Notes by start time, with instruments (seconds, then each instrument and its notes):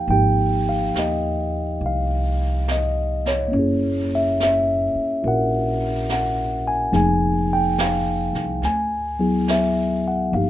0.07 upright bass G#1, tine electric piano F3 A#3 D#4 G5, brush sweep
0.12 tine electric piano G4
0.69 tine electric piano F5
0.94 upright bass D#2, snare, hi-hat pedal
0.99 tine electric piano D#5
1.81 upright bass C2, brush sweep
1.86 tine electric piano F5
2.68 tine electric piano D#5, snare, hi-hat pedal
3.26 tine electric piano C#5, snare
3.48 tine electric piano A#3 C#4
3.53 upright bass F#1, tine electric piano E4, brush sweep
3.59 tine electric piano G#4
4.15 tine electric piano E5
4.40 tine electric piano E5, snare, hi-hat pedal
4.95 muted upright bass stroke
5.23 upright bass A#1, tine electric piano E4 F#4 A#4, brush sweep
5.28 tine electric piano F#5
6.09 tine electric piano F#5, snare, hi-hat pedal
6.68 tine electric piano G#5
6.92 upright bass F1, tine electric piano F3 A#3 D#4 G#4 G#5, brush sweep, snare
7.53 tine electric piano G5
7.78 tine electric piano F5, snare, hi-hat pedal
8.33 upright bass C2, snare
8.62 upright bass D2, tine electric piano G#5, brush sweep, snare
9.19 tine electric piano F#3 B3 E4 G#4
9.48 tine electric piano E5, snare, hi-hat pedal
10.08 tine electric piano F#5
10.32 upright bass G1, tine electric piano F3 A#3 D#4 F5, brush sweep
10.37 tine electric piano G4